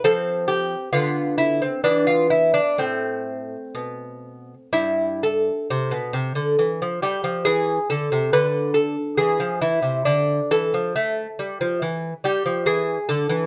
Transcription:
<<
  \new Staff \with { instrumentName = "Lute" } { \time 3/4 \key a \minor \tempo 4 = 68 a'8 g'8 f'8 e'16 c'16 d'16 f'16 e'16 d'16 | c'2 e'8 a'8~ | a'4. g'8 gis'8 a'8 | b'8 a'8 gis'8 e'8 d'8 a'8~ |
a'4. g'8 gis'8 a'8 | }
  \new Staff \with { instrumentName = "Lute" } { \clef bass \time 3/4 \key a \minor << { c'4 b4 b4 | a2. | r2. | r2. |
r2. | } \\ { f4 d4 e4 | a,4 b,4 g,4 | c16 b,16 c16 d16 e16 f16 g16 f16 e8 d16 c16 | d4 e16 f16 e16 c16 d8 e16 f16 |
a8 g16 f16 e8 g16 f16 e8 d16 e16 | } >> }
>>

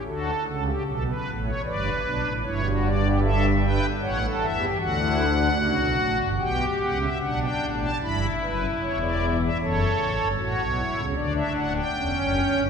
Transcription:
<<
  \new Staff \with { instrumentName = "Pipe organ" } { \time 4/4 \key d \major \tempo 4 = 76 << { a'2 b'4 cis''8 d''8 | e''8 g''8 fis''8 e''8 fis''2 | g''8 fis''16 e''16 fis''16 g''8 a''16 b''8 b'8 cis''16 d''8 e''16 | cis''4 cis''4 d''16 e''16 fis''16 g''4~ g''16 | } \\ { fis'8 a'16 g'16 a'16 b'8 cis''16 d''8 d'8 e'16 fis'8 g'16 | a'8 b'8 cis''16 a'8 g'16 fis'16 e'8 d'16 fis'4 | g'4 d'4 e'2 | a'4 fis'8 e'8 d'4 cis'4 | } >> }
  \new Staff \with { instrumentName = "Pipe organ" } { \clef bass \time 4/4 \key d \major <d, d>8 <cis, cis>8 <b,, b,>8 <a,, a,>8 <g,, g,>8 <b,, b,>16 <a,, a,>16 <g,, g,>4~ | <g,, g,>4 <a,, a,>8 <e, e>8 <d, d>4 <cis, cis>16 <b,, b,>16 <a,, a,>16 <g,, g,>16 | <b,, b,>8 <cis, cis>8 <b,, b,>8 <a,, a,>8 <g,, g,>8 <fis,, fis,>8 <e,, e,>4 | <fis,, fis,>8 <a,, a,>16 <g,, g,>16 <a,, a,>16 <b,, b,>8 <cis, cis>16 <d, d>8 <d,, d,>8 <e,, e,>16 <fis,, fis,>8 <g,, g,>16 | }
>>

